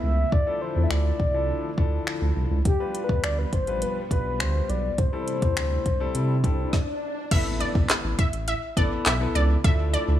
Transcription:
0.00 0.25 C#2 medium
0.00 0.24 A3 medium
0.00 2.61 A3 medium
0.00 0.24 B3 medium
0.00 0.30 B3 medium
0.00 0.24 E4 medium
0.00 2.61 E4 medium
0.00 0.24 B4 medium
0.00 0.34 E5 loud
0.32 0.43 D2 loud
0.32 2.63 D3 medium
0.32 4.94 F3 medium
0.32 0.63 D5 loud
0.32 kick loud
0.47 1.14 F3 medium
0.47 1.14 D4 medium
0.47 1.15 E4 medium
0.47 1.15 A4 medium
0.61 0.83 C5 medium
0.76 0.87 E2 medium
0.84 0.92 E5 medium
0.90 1.12 D2 loud
0.90 2.36 D5 medium
0.90 finger snap loud
1.20 1.52 C2 medium
1.20 kick medium
1.34 1.68 F3 medium
1.34 1.68 D4 medium
1.34 1.68 E4 medium
1.34 1.68 A4 medium
1.78 1.99 D2 medium
1.78 2.57 F3 medium
1.78 2.57 D4 medium
1.78 2.57 E4 medium
1.78 2.57 A4 medium
1.78 kick medium
2.07 finger snap loud
2.22 2.32 D2 loud
2.36 2.47 C2 medium
2.51 2.61 C#2 loud
2.65 2.76 D2 loud
2.65 6.69 G3 medium
2.65 4.96 B3 medium
2.65 3.06 G4 loud
2.65 kick loud
2.65 closed hi-hat medium
2.80 3.47 G3 medium
2.80 3.48 D4 medium
2.80 3.48 F4 medium
2.80 3.48 B4 medium
2.95 closed hi-hat medium
3.04 3.25 B4 loud
3.09 3.20 F2 medium
3.09 kick loud
3.24 3.45 D2 loud
3.24 3.40 D5 loud
3.24 finger snap loud
3.24 closed hi-hat medium
3.39 3.54 B4 medium
3.53 3.85 A1 medium
3.53 3.84 C5 loud
3.53 kick medium
3.53 closed hi-hat medium
3.67 4.01 G3 medium
3.67 4.01 D4 medium
3.67 4.01 F4 medium
3.67 4.01 B4 medium
3.67 closed hi-hat medium
3.82 4.11 B4 loud
3.82 closed hi-hat loud
4.11 4.42 B1 medium
4.11 4.90 G3 medium
4.11 4.90 D4 medium
4.11 4.90 F4 medium
4.11 4.90 B4 medium
4.11 4.42 B4 medium
4.11 kick medium
4.11 closed hi-hat medium
4.40 4.61 D2 loud
4.40 4.71 C5 loud
4.40 finger snap loud
4.40 closed hi-hat medium
4.69 4.91 B1 medium
4.69 5.00 D5 loud
4.69 closed hi-hat medium
4.98 5.09 C2 loud
4.98 6.71 C3 medium
4.98 6.71 A3 medium
4.98 6.71 E4 medium
4.98 7.02 C5 loud
4.98 kick loud
4.98 closed hi-hat medium
4.98 swell medium
5.13 5.80 G3 medium
5.13 5.80 C4 medium
5.13 5.81 E4 medium
5.13 5.81 A4 medium
5.28 closed hi-hat medium
5.42 5.53 E2 medium
5.42 kick loud
5.42 closed hi-hat medium
5.57 5.78 D2 medium
5.57 finger snap loud
5.57 closed hi-hat medium
5.86 6.07 C2 medium
5.86 kick medium
5.86 closed hi-hat medium
6.00 6.34 G3 medium
6.00 6.34 C4 medium
6.00 6.34 E4 medium
6.00 6.34 A4 loud
6.15 6.45 C3 loud
6.15 closed hi-hat loud
6.44 6.65 C2 medium
6.44 6.73 G3 medium
6.44 6.73 C4 medium
6.44 6.73 E4 medium
6.44 6.73 A4 medium
6.44 kick medium
6.44 closed hi-hat medium
6.73 kick loud
6.73 snare medium
7.31 7.63 A1 loud
7.31 8.21 B3 medium
7.31 8.22 E4 medium
7.31 8.22 A4 medium
7.31 7.52 E5 loud
7.31 kick loud
7.31 closed hi-hat medium
7.31 crash loud
7.31 impact medium
7.60 7.81 D5 medium
7.60 closed hi-hat medium
7.75 7.86 B1 medium
7.75 kick loud
7.89 snare loud
7.89 clap loud
7.89 closed hi-hat loud
8.04 8.15 A1 loud
8.19 8.40 E5 medium
8.19 kick loud
8.19 closed hi-hat medium
8.33 8.54 A1 medium
8.33 closed hi-hat medium
8.48 8.69 E5 medium
8.48 closed hi-hat loud
8.77 8.98 A1 medium
8.77 9.11 B3 medium
8.77 9.11 E4 medium
8.77 9.11 A4 loud
8.77 8.87 D5 medium
8.77 kick loud
8.77 closed hi-hat medium
9.06 9.27 B1 loud
9.06 9.17 E5 medium
9.06 snare medium
9.06 clap loud
9.06 closed hi-hat medium
9.20 9.54 B3 medium
9.20 9.55 E4 medium
9.20 9.55 A4 medium
9.35 9.57 C#2 medium
9.35 9.46 D5 medium
9.35 closed hi-hat medium
9.64 9.96 D2 loud
9.64 10.20 F3 medium
9.64 10.20 A3 medium
9.64 10.20 D4 medium
9.64 10.20 E4 medium
9.64 10.20 A4 medium
9.64 9.85 E5 loud
9.64 kick loud
9.64 closed hi-hat medium
9.93 10.14 D5 medium
9.93 closed hi-hat medium
10.08 10.19 D2 loud

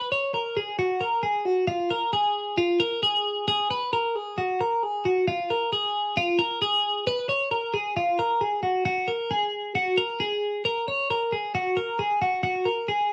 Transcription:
0.00 0.11 B4 medium
0.12 0.34 C#5 medium
0.34 0.56 A#4 medium
0.57 0.78 G#4 medium
0.79 1.01 F#4 medium
1.01 1.23 A#4 medium
1.23 1.45 G#4 medium
1.45 1.67 F#4 medium
1.67 1.90 F4 medium
1.91 2.13 A#4 medium
2.13 2.55 G#4 medium
2.58 2.80 F4 medium
2.80 3.02 A#4 medium
3.03 3.45 G#4 medium
3.48 3.70 G#4 loud
3.71 3.93 B4 medium
3.93 4.16 A#4 medium
4.16 4.38 G#4 medium
4.38 4.60 F#4 medium
4.61 4.83 A#4 medium
4.83 5.06 G#4 medium
5.05 5.27 F#4 medium
5.28 5.50 F4 loud
5.50 5.72 A#4 medium
5.73 6.15 G#4 medium
6.17 6.40 F4 medium
6.39 6.61 A#4 medium
6.62 7.04 G#4 medium
7.07 7.29 B4 medium
7.29 7.51 C#5 medium
7.51 7.74 A#4 medium
7.74 7.96 G#4 medium
7.97 8.19 F4 medium
8.19 8.41 A#4 medium
8.41 8.62 G#4 medium
8.63 8.84 F#4 medium
8.85 9.08 F#4 loud
9.08 9.31 A#4 medium
9.31 9.73 G#4 medium
9.75 9.98 F#4 medium
9.97 10.20 A#4 medium
10.20 10.62 G#4 medium
10.65 10.87 A#4 loud
10.88 11.10 C#5 medium
11.10 11.32 A#4 medium
11.32 11.54 G#4 medium
11.55 11.77 F#4 medium
11.77 11.99 A#4 medium
11.99 12.21 G#4 medium
12.22 12.42 F#4 medium
12.43 12.66 F#4 loud
12.65 12.88 A#4 medium
12.88 13.13 G#4 medium

